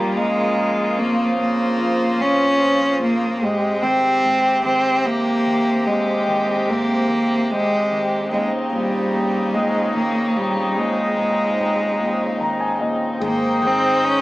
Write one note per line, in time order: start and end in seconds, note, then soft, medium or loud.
0.00 0.14 A#2 medium
0.00 3.38 C#3 medium
0.00 0.55 F3 soft
0.00 0.19 G3 medium
0.00 0.94 A#3 medium
0.00 3.38 F4 medium
0.14 1.36 A#2 soft
0.14 1.00 G#3 medium
0.55 1.76 F3 soft
0.96 3.37 F2 soft
0.96 1.38 A#3 medium
0.96 3.39 C5 medium
1.37 2.17 A#2 soft
1.37 2.23 A#3 medium
1.78 2.58 F3 soft
2.18 2.98 A#2 soft
2.18 3.02 C#4 medium
2.59 3.38 F3 soft
2.99 3.39 A#2 soft
3.04 3.45 A#3 medium
3.40 4.21 G#2 soft
3.40 8.27 C3 medium
3.40 3.84 G#3 medium
3.40 13.17 C4 soft
3.40 8.27 G4 medium
3.82 4.63 D#3 soft
3.82 4.64 C4 medium
4.23 5.82 G#2 soft
4.65 5.44 D#3 soft
4.65 5.07 C4 medium
5.05 5.88 A#3 medium
5.05 6.64 G4 soft
5.46 6.26 D#3 soft
5.87 8.28 D#2 medium
5.87 6.71 G#3 medium
6.28 7.07 D#3 soft
6.68 8.28 G#2 soft
6.68 7.53 A#3 medium
7.08 7.90 D#3 soft
7.51 8.32 G#3 medium
7.51 8.29 G4 soft
7.91 8.31 D#3 soft
8.30 9.12 D#2 medium
8.30 13.16 C#3 medium
8.30 8.51 G#3 medium
8.30 13.17 D#4 medium
8.72 9.53 A#2 soft
8.72 9.56 G3 medium
9.13 10.72 D#2 soft
9.54 10.34 A#2 soft
9.54 9.95 G#3 medium
9.95 11.54 D#3 soft
9.95 10.38 A#3 medium
10.35 11.15 A#2 soft
10.35 10.81 G3 medium
10.76 13.17 A#1 medium
10.76 12.82 G#3 medium
11.17 11.97 A#2 soft
11.59 13.18 D#2 soft
11.99 12.79 A#2 soft
12.40 13.19 D#3 soft
12.40 12.59 A#5 medium
12.60 12.79 G#5 soft
12.80 13.20 A#2 soft
12.80 13.18 D#5 medium
13.20 14.21 G#1 medium
13.20 14.21 D#3 medium
13.20 14.21 D#4 medium
13.20 14.21 G#4 medium
13.20 14.21 C5 medium
13.20 14.21 G5 medium
13.26 13.69 A#3 medium
13.62 14.21 D#3 soft
13.62 14.21 G#3 soft
13.67 14.06 C4 medium
14.05 14.21 C#4 medium